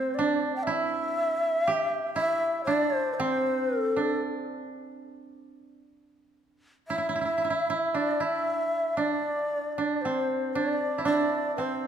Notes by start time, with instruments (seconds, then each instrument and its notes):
Already playing: koto A3 C4, shakuhachi C5
0.15 shakuhachi D5
0.19 koto D4
0.56 shakuhachi G5
0.64 koto E4, shakuhachi E5
1.67 koto G4
2.15 koto E4, shakuhachi E5
2.64 koto D4, shakuhachi D5
2.95 shakuhachi C5
3.14 shakuhachi C5
3.20 koto C4
3.84 shakuhachi A4
3.96 koto D4
6.88 koto E4, shakuhachi E5
6.98 koto E4
7.09 koto E4
7.16 koto E4
7.21 koto E4
7.25 koto E4
7.38 koto E4
7.44 koto E4
7.50 koto E4
7.70 koto E4
7.94 koto D4, shakuhachi D5
8.20 koto E4, shakuhachi E5
8.97 koto D4, shakuhachi D5
9.78 koto D4
10.01 koto C4, shakuhachi C5
10.54 koto D4, shakuhachi D5
10.98 koto E4
11.05 koto D4, shakuhachi D5
11.57 koto C4, shakuhachi C5